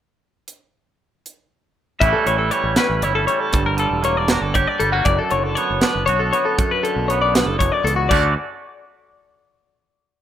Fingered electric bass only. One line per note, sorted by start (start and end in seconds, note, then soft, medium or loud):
2.01 2.13 A1 loud
2.26 2.49 A1 medium
2.64 2.76 A1 medium
2.90 3.01 A1 medium
3.03 3.26 G1 medium
3.53 3.88 G1 loud
3.91 4.37 E1 medium
4.42 4.65 G1 medium
4.81 5.04 G1 medium
5.06 5.17 F#1 loud
5.32 5.54 F#1 medium
5.70 5.82 F#1 medium
5.96 6.07 F#1 medium
6.07 6.30 B1 medium
6.96 7.42 B1 medium
7.46 7.69 F#1 medium
7.84 8.07 C#2 medium
8.11 8.34 D2 medium